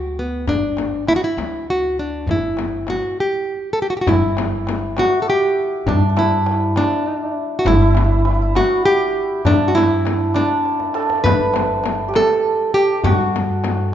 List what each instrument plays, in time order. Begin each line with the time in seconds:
Already playing: upright bass D2, nylon-string guitar F#4
0.17 nylon-string guitar B3, tombak ka
0.47 upright bass G1, nylon-string guitar D4, tombak dum, frame drum
0.77 tombak tek, frame drum
1.07 nylon-string guitar E4, tombak tek, frame drum
1.16 nylon-string guitar F#4
1.24 nylon-string guitar E4
1.37 upright bass D2, tombak tek, frame drum
1.68 nylon-string guitar F#4, tombak ka
1.98 nylon-string guitar D4, tombak ka
2.27 upright bass G1, tombak dum, frame drum
2.31 nylon-string guitar E4
2.57 tombak tek, frame drum
2.87 nylon-string guitar F#4, tombak tek, frame drum
3.20 nylon-string guitar G4
3.73 nylon-string guitar A4
3.82 nylon-string guitar G4
3.90 nylon-string guitar F#4
3.97 nylon-string guitar G4
4.01 nylon-string guitar F#4
4.07 upright bass G1, santur E4, nylon-string guitar E4, tombak dum, frame drum
4.37 tombak tek, frame drum
4.67 tombak tek, frame drum
4.97 santur F#4, nylon-string guitar F#4, tombak tek, frame drum
5.22 nylon-string guitar A4
5.28 santur G4, nylon-string guitar G4
5.86 upright bass G2, santur D4, nylon-string guitar D4, tombak dum, frame drum
6.10 santur D4
6.16 santur E4, nylon-string guitar E4, tombak tek, frame drum
6.46 tombak tek
6.76 santur D4, nylon-string guitar D4, tombak tek, frame drum
7.59 nylon-string guitar F#4
7.65 upright bass G1, santur E4, nylon-string guitar E4, tombak dum, frame drum
7.75 santur E4
7.82 santur E4
7.87 santur E4
7.95 santur E4, tombak tek, frame drum
8.04 santur E4
8.12 santur E4
8.19 santur E4
8.25 santur E4, tombak tek
8.35 santur E4
8.42 santur E4
8.55 nylon-string guitar F#4, santur F#4, tombak tek, frame drum
8.85 nylon-string guitar G4, santur G4
9.45 upright bass G2, santur D4, nylon-string guitar D4, tombak dum, frame drum
9.68 nylon-string guitar F#4
9.75 santur E4, nylon-string guitar E4, tombak tek, frame drum
10.05 tombak tek, frame drum
10.20 tombak ka
10.34 santur D4, nylon-string guitar D4, tombak tek, frame drum
10.65 tombak tek
10.80 tombak ka
10.94 santur A4, tombak tek
11.10 tombak ka
11.24 upright bass G1, nylon-string guitar B4, santur B4, tombak dum, frame drum
11.54 tombak tek, frame drum
11.84 tombak tek, frame drum
12.08 santur G4
12.14 santur A4, nylon-string guitar A4, tombak tek, frame drum
12.74 nylon-string guitar G4, santur G4
13.04 upright bass G2, nylon-string guitar F#4, santur F#4, tombak dum, frame drum
13.36 frame drum
13.64 tombak tek, frame drum